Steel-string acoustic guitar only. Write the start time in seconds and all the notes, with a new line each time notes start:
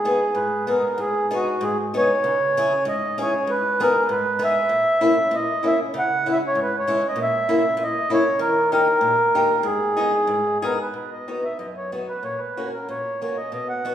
Already playing: G#2
0.05 B3 D#4 G#4
0.35 G#2
0.67 B3 D#4 G#4
0.98 G#2
1.31 B3 D#4 G#4
1.61 G#2
1.94 B3 D#4 G#4
2.24 C#3
2.57 C#4 E4 G#4
2.85 G#2
3.18 C#4 E4 G#4
3.47 G#2
3.80 B3 D#4 G#4
4.09 G#2
4.39 B3 D#4 G#4
4.69 A#2
5.01 A#3 C#4 E4
5.31 A#2
5.63 A#3 C#4 E4
5.94 C#3
6.26 G#3 C#4 E4
6.55 G#2
6.87 G#3 C#4 E4
7.16 A#2
7.49 A#3 C#4 E4
7.77 A#2
8.10 A#3 C#4 E4
8.39 D#3
8.72 A#3 D#4 G4
9.01 A#2
9.35 A#3 D#4 G4
9.63 G#2
9.97 B3 D#4 G#4
10.27 G#2
10.62 B3 D#4 G#4
10.94 B2
11.28 B3 D#4 F#4
11.59 F#2
11.92 B3 D#4 F#4
12.23 A#2
12.57 A#3 C#4 F#4
12.89 A#2
13.22 A#3 C#4 F#4
13.52 B2
13.85 B3 D#4 F#4